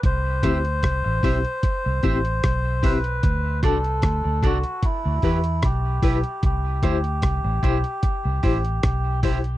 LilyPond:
<<
  \new Staff \with { instrumentName = "Clean electric guitar" } { \time 4/4 \key c \lydian \tempo 4 = 75 r8 <g' c'' e''>8 r8 <g' c'' e''>8 r8 <g' c'' e''>8 r8 <g' c'' e''>8 | r8 <fis' a' d''>8 r8 <fis' a' d''>8 r8 <e' g' b'>8 r8 <e' g' b'>8 | r8 <e' g' c''>8 r8 <e' g' c''>8 r8 <e' g' c''>8 r8 <e' g' c''>8 | }
  \new Staff \with { instrumentName = "Melodica" } { \time 4/4 \key c \lydian c''2.~ c''8 b'8~ | b'8 a'4 fis'8 e'4 g'4 | g'2.~ g'8 r8 | }
  \new Staff \with { instrumentName = "Reed electric piano" } { \time 4/4 \key c \lydian r8 <c' e' g'>8 r8 <c' e' g'>8 r8 <c' e' g'>8 r8 <c' e' g'>8 | r8 <d' fis' a'>8 r8 <d' fis' a'>8 r8 <e' g' b'>8 r8 <e' g' b'>8 | r8 <e' g' c''>8 r8 <e' g' c''>8 r8 <e' g' c''>8 r8 <e' g' c''>8 | }
  \new Staff \with { instrumentName = "Fingered electric bass" } { \clef bass \time 4/4 \key c \lydian c,8 d,8 c,16 a,,16 b,,16 r8 c,16 a,,8 b,,4 | d,8 c,8 d,16 d,16 c,16 r8 d,16 e,8 b,,8 b,,16 r16 | c,8 d,8 c,16 a,,16 b,,16 r8 c,16 a,,8 b,,4 | }
  \new DrumStaff \with { instrumentName = "Drums" } \drummode { \time 4/4 <hh bd>8 <hh bd ss>16 hh16 <hh bd ss>8 <hho bd>16 hh16 <hh bd>8 <hh bd>16 hh16 <hh bd ss>8 <hho bd>16 hh16 | <hh bd>8 <hh bd ss>16 hh16 <hh bd ss>8 <hh bd>16 hh16 <hh bd>8 <hho bd>16 hh16 <hh bd ss>8 <hho bd>16 hh16 | <hh bd>8 <hh bd ss>16 hh16 <hh bd ss>8 <hh bd>16 hh16 <hh bd>8 <hho bd>16 hh16 <hh bd ss>8 <hho bd>16 hh16 | }
>>